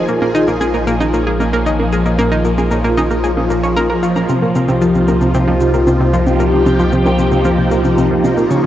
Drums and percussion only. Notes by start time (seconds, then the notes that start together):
0.08 cabasa
0.21 low bongo
0.35 cabasa
0.48 cabasa
0.61 low bongo, cabasa
0.74 cabasa
0.87 cabasa
1.00 low bongo, cabasa
1.13 cabasa
1.40 low bongo, cabasa
1.53 cabasa
1.66 cabasa
1.79 low bongo
1.92 cabasa
2.05 cabasa
2.19 low bongo, cabasa
2.32 cabasa
2.45 cabasa
2.58 low bongo, cabasa
2.71 cabasa
2.84 cabasa
2.98 low bongo, cabasa
3.11 cabasa
3.24 cabasa
3.37 low bongo
3.50 cabasa
3.63 cabasa
3.77 low bongo, cabasa
4.03 cabasa
4.16 low bongo, cabasa
4.29 low bongo, cabasa
4.55 cabasa
4.69 low bongo, cabasa
4.82 cabasa
4.95 cabasa
5.08 low bongo, cabasa
5.21 cabasa
5.34 cabasa
5.48 low bongo
5.61 cabasa
5.74 cabasa
5.87 low bongo, cabasa
6.14 cabasa
6.27 low bongo, cabasa
6.40 cabasa
6.66 low bongo, cabasa
6.79 cabasa
6.92 cabasa
7.06 low bongo, cabasa
7.19 cabasa
7.32 cabasa
7.45 low bongo, cabasa
7.71 cabasa
7.85 low bongo, cabasa
7.98 cabasa
8.24 low bongo, cabasa
8.37 cabasa
8.51 cabasa